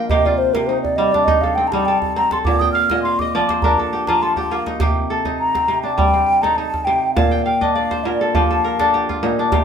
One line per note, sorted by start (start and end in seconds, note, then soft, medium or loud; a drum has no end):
0.00 0.15 A#2 medium
0.00 0.15 F3 medium
0.00 1.49 A#3 medium
0.00 0.60 D4 medium
0.00 0.94 A#4 medium
0.00 0.48 D5 medium
0.00 0.90 G5 medium
0.09 0.54 C3 medium
0.09 1.52 G4 medium
0.09 0.27 D#5 loud
0.09 djembe slap soft
0.09 djembe bass medium
0.25 1.77 F4 medium
0.25 0.39 D5 medium
0.25 djembe tone medium
0.38 0.55 C5 medium
0.54 2.50 C3 medium
0.54 0.68 A#4 medium
0.54 djembe slap medium
0.67 1.20 D#4 medium
0.67 0.82 C5 medium
0.67 djembe slap soft
0.82 0.98 D5 medium
0.82 djembe slap soft
0.82 djembe tone medium
0.96 1.72 G3 medium
0.96 1.14 D#5 medium
1.12 1.79 D4 medium
1.12 1.26 D5 medium
1.12 djembe slap medium
1.24 1.73 D#4 medium
1.24 1.43 D#5 medium
1.24 djembe bass medium
1.41 1.87 A4 medium
1.41 1.57 F5 medium
1.41 djembe tone medium
1.55 2.16 C4 medium
1.55 1.69 G5 medium
1.67 1.87 A5 medium
1.67 1.72 A#5 medium
1.72 2.50 G3 medium
1.72 3.41 D#4 medium
1.72 djembe slap medium
1.85 2.32 A4 medium
1.85 2.01 G5 loud
2.02 2.15 A5 medium
2.02 djembe tone medium
2.16 3.96 C4 medium
2.16 2.30 A#5 medium
2.31 2.97 A4 medium
2.31 2.38 C6 medium
2.31 djembe slap medium
2.45 2.90 A#2 medium
2.45 2.61 D6 loud
2.45 djembe slap soft
2.45 djembe bass medium
2.59 3.54 G5 medium
2.59 2.72 D#6 loud
2.59 djembe slap soft
2.59 djembe tone medium
2.73 3.05 F5 medium
2.73 3.01 F6 loud
2.90 4.85 A#2 medium
2.90 3.21 D#5 medium
2.90 djembe slap medium
3.03 4.05 F5 medium
3.03 3.21 C6 loud
3.19 3.70 D#5 medium
3.19 3.49 D6 loud
3.19 djembe tone medium
3.35 4.07 F3 medium
3.35 4.46 D5 medium
3.49 4.69 C5 medium
3.49 djembe slap medium
3.62 4.73 D4 medium
3.62 4.28 A#4 medium
3.62 3.80 A#5 medium
3.62 djembe slap soft
3.62 djembe bass medium
3.77 4.22 A4 medium
3.77 4.09 A5 medium
3.77 djembe slap soft
3.77 djembe tone medium
3.93 4.37 G4 medium
4.07 4.85 F3 medium
4.07 4.51 F4 medium
4.07 4.24 A#5 medium
4.07 djembe slap medium
4.22 4.57 A4 medium
4.22 4.36 C6 loud
4.36 4.80 G4 medium
4.36 4.64 D6 medium
4.36 djembe tone medium
4.51 5.16 A#3 medium
4.51 6.03 F4 medium
4.66 5.25 D#4 medium
4.66 djembe slap medium
4.80 5.67 C3 medium
4.80 6.22 G4 medium
4.80 djembe slap medium
4.80 djembe bass medium
5.10 6.42 A4 medium
5.25 5.89 D#4 medium
5.25 djembe tone medium
5.39 5.81 A#5 medium
5.55 6.13 C4 medium
5.55 djembe slap medium
5.68 6.86 C3 medium
5.68 djembe slap soft
5.83 6.49 D4 medium
5.83 5.96 A5 medium
5.83 djembe slap soft
5.96 7.21 G3 medium
5.96 6.43 G5 loud
5.96 djembe tone medium
5.96 djembe bass medium
6.14 7.94 C4 medium
6.28 djembe slap soft
6.42 6.58 D#4 medium
6.42 7.22 A4 medium
6.42 6.57 A#5 medium
6.42 djembe slap medium
6.56 7.67 D#4 medium
6.56 6.86 A5 loud
6.74 djembe tone medium
6.85 7.21 C3 medium
6.85 7.14 G5 medium
7.14 8.04 A#2 medium
7.14 7.43 F5 loud
7.14 8.04 A5 medium
7.14 djembe slap medium
7.14 djembe bass medium
7.31 8.24 G5 medium
7.45 8.45 F5 medium
7.45 7.73 G5 medium
7.61 8.79 D4 medium
7.61 8.68 D#5 medium
7.61 djembe tone medium
7.74 8.86 D5 medium
7.74 8.05 F5 medium
7.91 9.10 C5 medium
7.91 djembe slap medium
8.04 9.22 A#2 medium
8.04 8.56 A#4 medium
8.04 8.36 D5 medium
8.04 djembe slap soft
8.21 8.50 A4 medium
8.35 9.57 F3 medium
8.35 8.93 G4 medium
8.35 8.93 F5 medium
8.35 djembe tone medium
8.35 djembe bass medium
8.50 8.79 A4 medium
8.64 9.64 A#4 medium
8.64 djembe slap soft
8.79 9.29 D4 medium
8.79 9.29 A4 medium
8.79 djembe slap medium
8.94 9.52 G4 medium
9.09 9.64 F4 medium
9.09 djembe tone medium
9.23 9.57 A#2 medium
9.23 9.64 D#4 medium
9.39 9.64 D4 medium
9.52 9.64 C3 medium
9.52 9.64 G4 medium
9.52 djembe slap medium
9.52 djembe bass medium